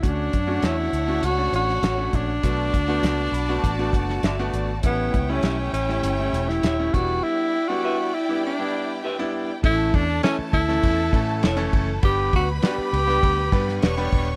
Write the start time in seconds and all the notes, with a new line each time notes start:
0.02 D2 A3 C#4 D4 F#4 C#5 F#5, kick, closed hi-hat
0.33 F#2, kick, closed hi-hat
0.47 A3 C#4 D4 F#4
0.62 E2 C#4 E4 F#4 A4 C#5, snare, closed hi-hat
0.93 D2, closed hi-hat
1.08 A3 C#4 D4 F#4
1.22 C#2 F#4, closed hi-hat
1.38 A3 C#4 D4 F#4
1.53 A1 F#4, closed hi-hat
1.69 snare
1.83 A1 C#4 F#4 A4 C#5, snare, closed hi-hat
1.98 A3 C#4 D4 F#4
2.13 A#1 D4, kick, closed hi-hat
2.43 B1 A3 B3 D4 F#4 D5 A5, kick, closed hi-hat
2.73 D2, kick, closed hi-hat
2.88 A3 B3 D4 F#4
3.03 C#2 D4 F#4 A4 D5, snare, closed hi-hat
3.32 B1 B5, closed hi-hat
3.49 A3 B3 D4 F#4 B5
3.63 A1 A5, kick, closed hi-hat
3.78 A3 B3 D4 F#4
3.93 F#1 F#5, kick, closed hi-hat
4.09 F#5, snare
4.23 G1 D4 F#4 A4 D5 E5, snare, closed hi-hat
4.39 A3 B3 D4 F#4
4.53 G#1 D5, closed hi-hat
4.83 A1 G3 A3 B3 C#4 E4 C#5 G5, kick, closed hi-hat
5.14 C#2, kick, closed hi-hat
5.29 G3 A3 C#4 E4
5.43 B1 E4 G4 C#5 E5, snare, closed hi-hat
5.73 A1 C#4, closed hi-hat
5.89 G3 A3 C#4 E4, snare
6.03 G1, closed hi-hat
6.19 G3 A3 C#4 E4
6.33 E1, closed hi-hat
6.49 E4, snare
6.63 D#1 E4 G4 C#5 E5, snare, closed hi-hat
6.79 G3 A3 C#4 E4
6.94 E1 G3 B3 D4 E4 F#4 D5 G5, kick, closed hi-hat
7.24 E4
7.68 G3 B3 D4 E4 F#4
7.83 D4 G4 B4 E5
8.14 E4
8.29 G3 B3 D4 E4
8.45 D4
8.59 G3 B3 D4 E4
9.03 D4 G4 B4 E5
9.19 G3 B3 D4 E4
9.63 A1 E3 A3 C#4 E4 A4 A5, kick, ride
9.94 E2 D4, kick, ride
10.23 E3 A3 C#4 E4 A4 C#5 E5, snare, ride
10.39 muted fingered electric bass stroke
10.53 D2 E4, kick, ride
10.68 E3 A3 C#4 E4 A4, snare
10.83 E2, kick, ride
11.13 A2 E3 A3 C#4 E4 A4, kick, ride
11.43 F1 E4 A4 C#5 E5, snare, ride
11.57 E3 A3 C#4 E4 A4
11.73 F#1, kick, ride
12.02 G1 G3 B3 D4 G4 B4 B5, kick, ride
12.33 D2 F#4, kick, ride
12.62 G3 B3 D4 G4 B4 D5, snare, ride
12.78 muted fingered electric bass stroke
12.93 C#2, ride
13.07 G3 B3 D4 G4 B4, snare
13.23 D2, kick, ride
13.52 G2 G3 B3 D4 G4 B4, kick, ride
13.69 snare
13.82 E1 D4 G4 B4 C#5 D5 C#6, snare, ride
13.97 G3 B3 D4 G4 B4
14.12 D#1, kick, ride